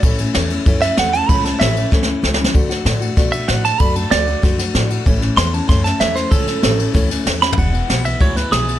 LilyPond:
<<
  \new Staff \with { instrumentName = "Clean electric guitar" } { \time 4/4 \key a \major \tempo 4 = 191 r2 r8 e''8 fis''8 a''8 | b''8 a''8 e''4 r2 | r2 r8 e''8 fis''8 a''8 | b''8 a''8 d''4 r2 |
r4 c'''8 a''8 c'''8 a''8 e''8 c''8 | a'2 r4. b''8 | fis''4. e''8 cis''8 b'8 gis'4 | }
  \new Staff \with { instrumentName = "Steel-string acoustic guitar" } { \time 4/4 \key a \major <a, e a cis' e'>8 <a cis' e'>8 <e a cis' e'>8 <a cis' e'>8 <a, e a cis' e'>8 <a cis' e'>8 <e a cis' e'>8 <a cis' e'>8 | <a, e a cis' e'>8 <a cis' e'>8 <e a cis' e'>8 <a cis' e'>8 <a, e a cis' e'>8 <a cis' e'>8 <e a cis' e'>8 <a cis' e'>8 | <d a d' fis'>8 <a d' fis'>8 <d a d' fis'>8 <a d' fis'>8 <d a d' fis'>8 <a d' fis'>8 <d a d' fis'>8 <a d' fis'>8 | <d a d' fis'>8 <a d' fis'>8 <d a d' fis'>8 <a d' fis'>8 <d a d' fis'>8 <a d' fis'>8 <d a d' fis'>8 <a d' fis'>8 |
<a, e a cis' e'>8 <a cis' e'>8 <e a cis' e'>8 <a cis' e'>8 <a, e a cis' e'>8 <a cis' e'>8 <e a cis' e'>8 <a cis' e'>8 | <a, e a cis' e'>8 <a cis' e'>8 <e a cis' e'>8 <a cis' e'>8 <a, e a cis' e'>8 <a cis' e'>8 <e a cis' e'>8 <a cis' e'>8 | <e, b, e gis b e'>8 <e gis b e'>8 <e gis b e'>8 <e gis b e'>8 <e, b, e gis b e'>8 <e gis b e'>8 <e gis b e'>8 <e gis b e'>8 | }
  \new Staff \with { instrumentName = "Upright bass" } { \clef bass \time 4/4 \key a \major a,,4 e,4 fis,4 e,4 | cis,4 a,,4 d,4 cis,4 | d,4 a,4 b,4 a,4 | fis,4 d,4 fis,4 a,4 |
a,,4 e,4 fis,4 e,4 | cis,4 a,,4 d,4 e,4 | e,,4 b,,4 d,4 b,,4 | }
  \new DrumStaff \with { instrumentName = "Drums" } \drummode { \time 4/4 <bd cymr>8 cymr8 <cymr sn>8 cymr8 <bd cymr>8 <cymr sn>8 <cymr sn>8 cymr8 | <bd cymr>8 <cymr sn>8 <cymr sn>8 cymr8 \tuplet 3/2 { <bd sn>8 sn8 r8 sn8 sn8 sn8 } | <bd cymr>8 <cymr sn>8 <cymr sn>8 cymr8 <bd cymr sn>8 cymr8 <cymr sn>8 <cymr sn>8 | <bd cymr>8 cymr8 <cymr sn>8 cymr8 <bd cymr sn>8 <cymr sn>8 <cymr sn>8 cymr8 |
<bd cymr>8 <cymr sn>8 <cymr sn>8 cymr8 <bd cymr sn>8 <cymr sn>8 <cymr sn>8 <cymr sn>8 | <bd cymr>8 <cymr sn>8 <cymr sn>8 cymr8 <bd cymr sn>8 <cymr sn>8 \tuplet 3/2 { <cymr sn>16 r16 r16 sn16 r16 tomfh16 } | <bd cymr>8 cymr8 <cymr sn>8 cymr8 <bd cymr>8 <cymr sn>8 <cymr sn>8 cymr8 | }
>>